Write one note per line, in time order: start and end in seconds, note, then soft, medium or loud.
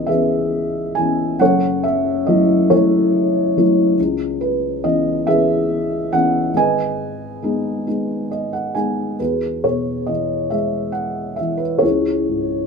0.00 1.37 C#2 soft
0.00 0.08 E3 soft
0.00 0.09 B3 soft
0.00 0.10 C#4 soft
0.00 0.08 B4 medium
0.00 1.42 D#5 medium
0.07 0.94 E3 soft
0.07 0.94 B3 soft
0.07 0.94 C#4 soft
0.07 1.36 G#4 medium
0.07 1.36 B4 soft
0.07 0.98 E5 medium
0.95 1.40 E3 soft
0.95 1.40 B3 soft
0.95 1.40 C#4 soft
0.95 1.41 G#5 medium
1.40 3.95 F#1 soft
1.40 3.95 F#2 medium
1.40 2.67 A4 medium
1.40 2.67 C#5 medium
1.40 1.85 F#5 medium
1.84 2.24 E5 medium
2.27 2.70 F#3 soft
2.27 2.70 A3 soft
2.27 2.70 E4 soft
2.27 2.71 D#5 medium
2.70 3.54 F#3 soft
2.70 3.54 A3 soft
2.70 3.56 E4 soft
2.70 3.95 A4 soft
2.70 3.62 C#5 medium
3.57 3.98 F#3 soft
3.57 3.98 A3 soft
3.57 3.98 E4 medium
3.99 6.51 C#2 medium
4.41 4.85 B4 medium
4.84 5.25 E3 soft
4.84 5.26 B3 soft
4.84 5.26 C#4 medium
4.84 5.28 D#5 medium
5.27 6.09 E3 soft
5.27 6.10 B3 soft
5.27 6.10 C#4 medium
5.27 6.51 G#4 medium
5.27 6.51 B4 medium
5.27 6.14 E5 medium
6.12 6.53 E3 soft
6.12 6.53 B3 soft
6.12 6.54 C#4 medium
6.12 6.52 F#5 medium
6.54 9.15 G#1 medium
6.54 9.15 G#2 medium
6.54 8.72 B4 medium
6.54 8.30 D#5 medium
6.54 8.72 G#5 medium
7.42 7.85 G#3 soft
7.42 7.86 B3 soft
7.42 7.86 D#4 soft
7.87 8.73 G#3 soft
7.87 8.73 B3 soft
7.87 8.73 D#4 soft
8.32 8.52 D#5 medium
8.53 8.74 F#5 medium
8.75 9.18 G#3 soft
8.75 9.18 B3 soft
8.75 9.18 D#4 soft
8.75 9.16 G#5 medium
9.20 11.80 E2 soft
9.20 10.48 F#4 soft
9.20 10.49 G#4 soft
9.20 9.65 B4 medium
9.64 11.35 B2 soft
9.64 10.09 C#5 medium
10.06 11.39 E3 soft
10.06 10.52 D#5 medium
10.50 11.79 G#3 soft
10.50 10.92 E5 medium
10.92 11.35 F#5 medium
11.36 11.83 E3 soft
11.36 11.61 E5 medium
11.57 11.82 B4 medium
11.79 12.67 C#5 medium
11.83 12.67 C#2 soft
11.83 12.67 E4 soft
11.83 12.67 G#4 soft
12.29 12.67 G#2 soft